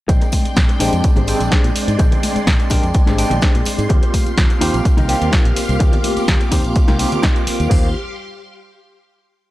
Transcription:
0.08 A#1 G#3 C4 D4 D5 G5 C6, muted clean electric guitar stroke, kick, closed hi-hat, tambourine
0.21 muted clean electric guitar stroke, closed hi-hat, tambourine
0.32 muted clean electric guitar stroke, kick, open hi-hat, tambourine, high conga
0.45 muted fingered electric bass stroke, closed hi-hat, tambourine
0.56 A#1, kick, snare, closed hi-hat, tambourine
0.68 muted clean electric guitar stroke, closed hi-hat, tambourine
0.80 A#1 G#3 C4 D4 G4 G#4 C5 G5, open hi-hat, tambourine
0.93 F2, closed hi-hat, tambourine
1.04 kick, closed hi-hat, tambourine
1.16 G#1 D4 G4 G#4 C5, closed hi-hat, tambourine, low conga
1.27 G#3 C4 D4 G5, open hi-hat, tambourine
1.40 A#1, closed hi-hat, tambourine
1.51 D4 G4 G#4 C5, kick, snare, closed hi-hat
1.64 A#2, closed hi-hat, tambourine
1.75 muted clean electric guitar stroke, muted fingered electric bass stroke, open hi-hat, tambourine
1.88 G#2, closed hi-hat, tambourine
1.99 A#1 G#3 C4 D4 G5, muted clean electric guitar stroke, kick, closed hi-hat, tambourine
2.11 muted clean electric guitar stroke, closed hi-hat, tambourine, low conga
2.23 muted clean electric guitar stroke, open hi-hat, tambourine, high conga
2.36 muted fingered electric bass stroke, closed hi-hat, tambourine
2.47 A#1, kick, snare, closed hi-hat, tambourine
2.59 muted clean electric guitar stroke, closed hi-hat, tambourine
2.70 A#1 G#3 C4 D4 G4 G#4 A#4 G5, kick, open hi-hat, tambourine
2.83 F2, closed hi-hat, tambourine
2.94 muted clean electric guitar stroke, kick, closed hi-hat, tambourine
3.07 G#1 D4 G4 G#4 C5, snare, closed hi-hat, tambourine, high conga
3.17 G#3 C4 D4 G5, open hi-hat, tambourine
3.30 A#1, closed hi-hat, tambourine, low conga
3.41 D4 G4 G#4 C5, kick, snare, closed hi-hat, tambourine
3.54 A#2, closed hi-hat, tambourine
3.65 muted clean electric guitar stroke, muted fingered electric bass stroke, open hi-hat, tambourine
3.78 G#2, closed hi-hat, tambourine
3.89 D#2 A#3 C4 F4 G4 F5, muted clean electric guitar stroke, kick, closed hi-hat, tambourine
4.02 muted clean electric guitar stroke, closed hi-hat, tambourine
4.13 muted clean electric guitar stroke, kick, open hi-hat, tambourine, high conga
4.26 muted fingered electric bass stroke, closed hi-hat, tambourine
4.38 D#2, kick, snare, closed hi-hat, tambourine
4.50 muted clean electric guitar stroke, closed hi-hat, tambourine
4.61 D#2 A#3 C4 D#4 F4 G4 C5, open hi-hat, tambourine
4.74 A#1, closed hi-hat, tambourine
4.85 muted clean electric guitar stroke, kick, closed hi-hat, tambourine
4.97 C2 D#4 F4 G4 D#5, closed hi-hat, tambourine, low conga
5.08 A#3 C4 F4 G4, open hi-hat, tambourine
5.21 D#2, closed hi-hat, tambourine
5.32 D#4 F4 G4 C5, kick, snare, closed hi-hat, tambourine
5.45 A#1, closed hi-hat, tambourine
5.56 muted clean electric guitar stroke, muted fingered electric bass stroke, open hi-hat, tambourine
5.69 C2, closed hi-hat, tambourine
5.79 D#2 A#3 C4 F4 G4 D6, muted clean electric guitar stroke, kick, closed hi-hat, tambourine
5.92 muted clean electric guitar stroke, closed hi-hat, tambourine, low conga
6.04 muted clean electric guitar stroke, open hi-hat, tambourine, high conga
6.17 muted fingered electric bass stroke, closed hi-hat, tambourine
6.28 D#2, kick, snare, closed hi-hat, tambourine
6.40 muted clean electric guitar stroke, closed hi-hat, tambourine
6.51 D#2 A#3 C4 D#4 F4 G4 C5, kick, open hi-hat, tambourine
6.64 A#1, closed hi-hat, tambourine
6.75 muted clean electric guitar stroke, kick, closed hi-hat, tambourine
6.88 C2 D#4 F4 G4 A#4, snare, closed hi-hat, tambourine, high conga
6.99 A#3 C4 F4 G4, open hi-hat, tambourine
7.12 closed hi-hat, tambourine, low conga
7.22 D#4 F4 G4 D#5, kick, snare, closed hi-hat, tambourine
7.36 closed hi-hat, tambourine
7.46 muted clean electric guitar stroke, muted fingered electric bass stroke, open hi-hat, tambourine
7.60 D#2, closed hi-hat, tambourine
7.69 D#2 A#3 C4 F4 G4 C5 F5 C6, kick, floor tom, open hi-hat

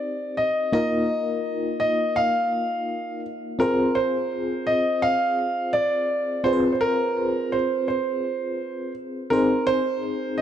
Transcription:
Already playing: C4 D#4 G4 C5 D5
0.37 D#5
0.72 A#3 D#4 F4 A#4 D#5
1.80 D#5
2.16 F5
3.59 C4 F4 G#4 A#4 C5
3.95 C5
4.67 D#5
5.02 F5
5.73 D5
6.44 C4 F4 G#4 B4 C5
6.53 C5
6.73 C5
6.81 A#4
7.52 C5
7.88 C5
9.30 C4 D#4 G#4 A#4 C5
9.67 C5
10.38 D#5

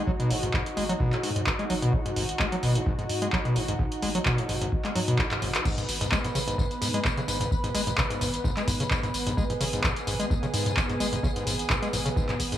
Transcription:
Already playing: D#4 F#4
0.07 F#3, kick
0.20 B2, closed hi-hat
0.30 G#1 G#2, open hi-hat
0.43 G#2, closed hi-hat
0.54 G#2, kick, clap
0.66 closed hi-hat
0.77 G#1 G#3, open hi-hat
0.89 F#3, closed hi-hat
1.00 B2, kick
1.13 G#2, clap, closed hi-hat
1.23 G#2, open hi-hat
1.36 G#2, closed hi-hat
1.47 kick, clap
1.59 G#3, closed hi-hat
1.70 G#1 F#3, open hi-hat
1.82 B2, closed hi-hat
1.93 G#2, kick
2.06 G#2, closed hi-hat
2.16 G#1 G#2, open hi-hat
2.29 closed hi-hat
2.39 G#3, kick, clap
2.52 F#3, closed hi-hat
2.63 G#1 B2, open hi-hat
2.75 G#2, closed hi-hat
2.86 G#2, kick
2.99 G#2, closed hi-hat
3.09 G#2, open hi-hat
3.22 G#3, closed hi-hat
3.33 F#3, kick, clap
3.45 B2, closed hi-hat
3.56 G#1 G#2, open hi-hat
3.68 G#2, closed hi-hat
3.79 G#2, kick
3.92 closed hi-hat
4.02 G#1 G#3, open hi-hat
4.15 F#3, closed hi-hat
4.26 B2, kick, clap
4.38 G#2, closed hi-hat
4.49 G#1 G#2, open hi-hat
4.62 G#2, closed hi-hat
4.72 kick
4.85 G#3, clap, closed hi-hat
4.95 G#2 F#3, open hi-hat
5.08 B2, closed hi-hat
5.19 G#2, kick, clap
5.31 G#2, clap, closed hi-hat
5.42 G#1 G#2, open hi-hat
5.55 clap, closed hi-hat
5.65 G#2 B3 B4, kick, crash, tambourine
5.78 G#2, closed hi-hat, tambourine
5.89 G#1, open hi-hat, tambourine
6.01 G#2, closed hi-hat, tambourine
6.12 G#3, kick, clap, tambourine
6.24 G#2, closed hi-hat, tambourine
6.35 G#1 C#3, open hi-hat, tambourine
6.48 G#2, closed hi-hat, tambourine
6.58 G#2, kick, tambourine
6.71 closed hi-hat, tambourine
6.82 G#2, open hi-hat, tambourine
6.94 G#3, closed hi-hat, tambourine
7.05 G#2, kick, clap, tambourine
7.17 C#3, closed hi-hat, tambourine
7.28 G#1 G#2, open hi-hat, tambourine
7.41 G#2, closed hi-hat, tambourine
7.51 kick, tambourine
7.64 G#2, closed hi-hat, tambourine
7.75 G#1 G#3, open hi-hat, tambourine
7.87 G#2, closed hi-hat, tambourine
7.98 C#3, kick, clap, tambourine
8.10 G#2, closed hi-hat, tambourine
8.21 G#1 G#2, open hi-hat, tambourine
8.34 closed hi-hat, tambourine
8.44 G#2, kick, tambourine
8.57 G#3, clap, closed hi-hat, tambourine
8.68 G#2, kick, open hi-hat, tambourine
8.80 C#3, closed hi-hat, tambourine
8.91 G#2, kick, clap, tambourine
9.03 G#2, closed hi-hat, tambourine
9.14 G#1, open hi-hat, tambourine
9.27 G#2, closed hi-hat, tambourine
9.37 G#3 G#4, kick, tambourine
9.50 G#2, closed hi-hat, tambourine
9.61 G#1 C#3, open hi-hat, tambourine
9.73 G#2, closed hi-hat, tambourine
9.84 G#2, kick, clap, tambourine
9.96 closed hi-hat, tambourine
10.07 G#1 G#2, open hi-hat, tambourine
10.20 G#3, closed hi-hat, tambourine
10.30 G#2, kick, tambourine
10.43 C#3, closed hi-hat, tambourine
10.54 G#2, open hi-hat, tambourine
10.66 G#2, closed hi-hat, tambourine
10.77 kick, clap, tambourine
10.89 G#2, closed hi-hat, tambourine
11.00 G#1 G#3, open hi-hat, tambourine
11.13 G#2, closed hi-hat, tambourine
11.23 C#3, kick, tambourine
11.36 G#2, closed hi-hat, tambourine
11.47 G#1 G#2, open hi-hat, tambourine
11.59 closed hi-hat, tambourine
11.70 G#2, kick, clap, tambourine
11.82 G#3, closed hi-hat, tambourine
11.93 G#1 G#2, open hi-hat, tambourine
12.06 C#3, closed hi-hat, tambourine
12.16 G#2, kick, tambourine
12.29 G#2, clap, closed hi-hat, tambourine
12.40 G#1, kick, open hi-hat, tambourine
12.52 G#2, closed hi-hat, tambourine

